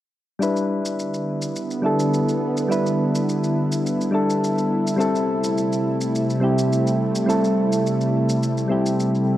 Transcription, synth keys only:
0.39 G3 D4 E4 B4
1.82 G3 D4 E4 A4
2.68 G3 D4 E4 B4
4.11 G3 D4 E4 A4
4.96 G3 C4 E4 A4
6.40 G3 C4 E4 G4
7.26 G3 C4 E4 A4
8.68 G3 C4 E4 G4

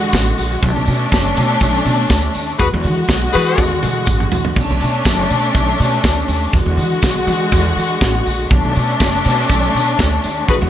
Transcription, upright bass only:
0.13 A1
0.38 A#1
0.63 B1
0.76 B1
0.88 B2
1.13 F#1
1.37 B2
1.61 B1
1.86 B2
2.10 D2
2.35 D#2
2.59 E2
2.74 E2
2.85 E3
3.08 B1
3.35 E3
3.58 E2
3.83 E3
4.08 A1
4.33 A#1
4.56 B1
4.70 B1
4.82 B2
5.06 F#1
5.31 B2
5.55 B1
5.80 B2
6.04 D2
6.28 D#2
6.54 E2
6.66 E2
6.77 E3
7.03 B1
7.27 E3
7.53 E2
7.76 E3
8.02 A1
8.26 A#1
8.51 B1
8.65 B1
8.77 B2
9.01 F#1
9.26 B2
9.50 B1
9.75 B2
10.00 D2
10.25 D#2
10.49 E2
10.62 E2

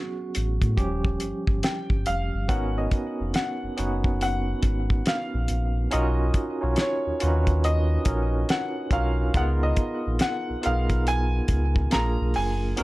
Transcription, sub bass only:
0.37 A1
0.63 A2
0.79 D#1
1.22 G1
1.49 G1
1.91 G1
2.08 F1
2.34 G1
2.50 G#1
3.20 F1
3.63 F#1
3.79 F#1
4.64 G#1
5.34 A#1
5.50 A#1
5.94 B1
6.63 B1
7.07 D#2
7.23 D#2
8.07 A#1
8.92 B1
9.36 C#2
10.07 A#1
10.50 B1
10.66 B1
11.50 C#2
11.95 A#1
12.21 B1
12.37 F#1

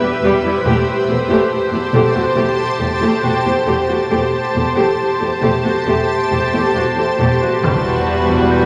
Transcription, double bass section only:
0.23 E1
0.66 E1
1.08 E1
1.93 E1
2.36 E1
2.80 E1
3.23 E1
3.67 E1
4.12 E1
4.56 E1
5.43 E1
5.87 E1
6.31 E1
6.75 E1
7.20 E1
7.63 E1

